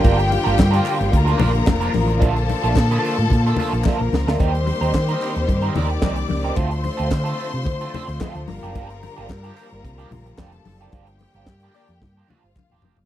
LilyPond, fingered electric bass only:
\new Staff \with { instrumentName = "Fingered electric bass" } { \clef bass \time 4/4 \key g \minor \tempo 4 = 110 g,,8. g,,16 g,8 r16 g,,16 d,8 bes,,8 f,,8 a,,8 | bes,,8. bes,,16 bes,8 r16 a,16 bes,8 r16 bes,,16 r16 bes,,16 cis,16 d,16 | ees,8. ees,16 ees8 r16 ees,16 g,8 ees,8 c,8 cis,8 | d,8. d,16 d8 r16 c16 d8 r16 d,16 r16 d,16 g,,16 fis,,16 |
g,,8. g,,16 g,8 r16 g,,16 c,8 bes,,8 f,,8 fis,,8 | g,,8. g,,16 g,8 r16 f,16 g,8 r16 g,,16 r16 e,,16 f,,16 fis,,16 | }